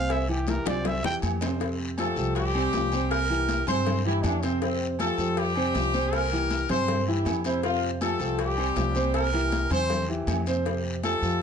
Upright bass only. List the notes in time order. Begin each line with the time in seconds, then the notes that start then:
Already playing: C2
0.66 C2
1.03 E2
1.22 F2
2.16 C2
2.73 C2
3.67 G2
4.23 F2
5.18 F2
5.74 C2
6.69 G2
7.25 F2
8.19 C2
8.76 C2
9.70 E2
10.27 F2
11.22 F2